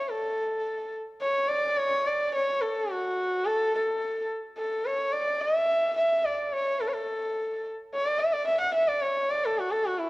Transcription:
sarangi
0.00 C#5
0.09 A4
1.22 C#5
1.49 D5
1.78 C#5
2.06 D5
2.36 C#5
2.61 A4
2.91 F#4
3.46 A4
3.75 A4
4.58 A4
4.86 C#5
5.13 D5
5.41 E5
5.97 E5
6.24 D5
6.52 C#5
6.80 A4
6.88 C#5
6.93 A4
7.93 C#5
8.06 D5
8.20 E5
8.33 D5
8.47 E5
8.61 F#5
8.75 E5
8.88 D5
9.01 C#5
9.30 D5
9.45 A4
9.60 F#4
9.71 A4
9.86 F#4
9.98 E4

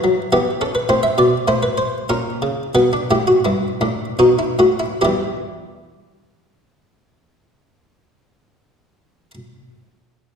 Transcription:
harpsichord
Already playing: F#4
0.04 F#3
0.32 E3 B3 G4
0.61 C#4 A4
0.75 B4
0.89 A2 C4 C5
1.03 E5
1.18 B2 D5
1.48 A2 E4 C5
1.63 B4
1.78 C5
2.09 A#2 C#4 A#4
2.42 C#3
2.75 B2 B3 B4
2.93 D4
3.11 A2 E4 G4
3.27 F#4
3.45 G2 E4
3.81 A2 D4
4.19 B2 D#4 F#4
4.39 E4
4.59 A2 F#4
4.80 E4
5.01 E2 E3 G3 E4 G4

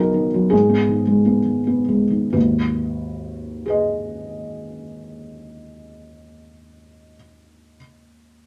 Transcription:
felt piano
Already playing: B2 D#3 F#3 B4
0.00 D#4 A#4
0.14 D#3
0.34 F#3
0.50 G#2 G#4
0.69 B3
0.89 D#3
1.07 G#3
1.26 B3
1.45 D#3
1.67 B3
1.88 G#3
2.10 D#3
2.32 G#1 D#2 B4
3.66 G#4 B4
3.70 D#5

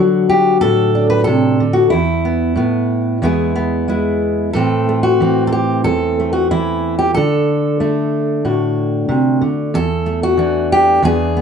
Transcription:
steel-string acoustic guitar
Already playing: D3 F#4 A4
0.00 F#3
0.29 G4
0.61 A2 A4
0.95 D4
1.10 B4
1.24 C3 A4
1.60 D3
1.73 F#4
1.90 E2 E4
2.25 B3
2.56 A2 B3
3.22 E2 G#3 B3 E4 G#4
3.56 B3
3.88 G#3 E4
4.53 A2 E3 A3 C4 A4
4.89 A3
5.03 F#4
5.20 E3 C4
5.47 A4
5.52 G4
5.84 E2 A4
6.20 A3
6.33 F#4
6.51 E3 E4
6.99 G4
7.14 D3 A4
7.80 A3 D4
8.45 A2 F#4
9.09 C3
9.41 D3
9.74 E2 A4
10.06 A3
10.23 F#4
10.37 E3 D4
10.72 G4
11.02 E2 E3 B3 D4 G#4
11.37 B3

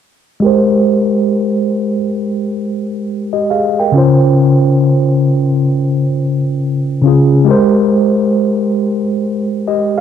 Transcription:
tine electric piano
0.40 G#3 G4
0.44 A#4 C5
3.33 G4 D#5
3.50 G#4 F5
3.79 A#4 G5
3.92 C#3 C#4 F4
3.98 C5
7.02 C#3 C#4
7.06 F4 G#4
7.45 G#3 G4 A#4
7.51 C5
9.68 G4 D#5
9.98 F5

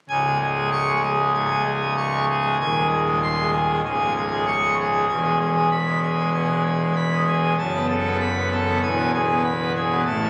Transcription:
pipe organ
0.09 C#1 C#2 G#5
0.26 G#3
0.41 G#4
0.56 G#3
0.72 C#6
0.88 G#3
1.03 G#4
1.19 G#3
1.34 G#2 G#5
1.49 G#3
1.65 G#4
1.81 G#3
1.97 C#6
2.13 G#3
2.29 G#4
2.44 G#3
2.60 D#1 D#2 G#5
2.76 G#3
2.91 G#4
3.06 G#3
3.23 C6
3.38 G#3
3.53 G#4
3.69 G#3
3.85 C#1 C#2 G#5
4.00 G#3
4.16 G#4
4.32 G#3
4.47 C#6
4.63 G#3
4.79 G#4
4.94 G#3
5.09 E1 E2 G#5
5.24 G#3
5.40 G#4
5.56 G#3
5.71 B5
5.87 G#3
6.02 G#4
6.19 G#3
6.34 B2 G#5
6.50 G#3
6.65 G#4
6.81 G#3
6.96 B5
7.12 G#3
7.27 G#4
7.43 G#3
7.58 F#1 F#2 A5
7.74 B3
7.89 A4
8.05 B3
8.21 B5
8.36 B3
8.52 A4
8.67 B3
8.83 E1 E2 G#5
8.98 B3
9.14 G#4
9.30 B3
9.44 B5
9.60 B3
9.76 G#4
9.91 B3
10.06 A1 A2 A5
10.21 C#4

